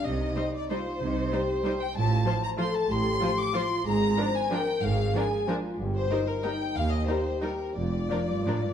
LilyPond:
<<
  \new Staff \with { instrumentName = "Violin section" } { \time 3/4 \key c \minor \tempo 4 = 185 ees''4. d''8 c''4~ | c''2~ c''8 g''8 | \key bes \major a''4. bes''8 c'''8 a''8 | c'''4. d'''8 c'''4 |
bes''4. aes''8 g''4 | f''4 aes''4 r4 | r8 c''4 bes'8 g''4 | f''8 ees''8 c''4 bes'4 |
d''2. | }
  \new Staff \with { instrumentName = "Violin section" } { \time 3/4 \key c \minor r4 c''4 c''4 | r4 c''4 c''4 | \key bes \major r4 c''4 c''4 | r4 c''4 c''4 |
r4 bes'4 bes'4 | r4 bes'4 bes'4 | r4 bes'4 bes'4 | r4 bes'4 bes'4 |
r4 bes'4 bes'4 | }
  \new Staff \with { instrumentName = "French horn section" } { \time 3/4 \key c \minor ees'2 f'4 | ees'4 g'2 | \key bes \major f'4 c''4 a'4 | g'2 f'4 |
aes'4 c''4 bes'4 | aes'2 f'4 | g'4 ees'4 ees'4~ | ees'4 g'2 |
f'2. | }
  \new Staff \with { instrumentName = "Viola section" } { \time 3/4 \key c \minor r4 <g ees'>4 <g ees'>4 | r4 <g ees'>4 <g ees'>4 | \key bes \major r4 <f f'>4 <f f'>4 | r4 <f f'>4 <f f'>4 |
r4 <f d'>4 <f d'>4 | r4 <f d'>4 <f d'>4 | r4 <g ees'>4 <g ees'>4 | r4 <g ees'>4 <g ees'>4 |
r4 <f d'>4 <f d'>4 | }
  \new Staff \with { instrumentName = "Cello section" } { \clef bass \time 3/4 \key c \minor c4 r2 | c4 r2 | \key bes \major a,4 r2 | a,4 r2 |
aes,4 r2 | aes,4 r2 | g,4 r2 | ees,4 r2 |
f,4 f,8 g,8 a,8 g,8 | }
  \new Staff \with { instrumentName = "Double bass section" } { \clef bass \time 3/4 \key c \minor c,4 r2 | c,4 r2 | \key bes \major a,,4 r2 | a,,4 r2 |
aes,,4 r2 | aes,,4 r2 | g,,4 r2 | ees,4 r2 |
f,,4 r2 | }
>>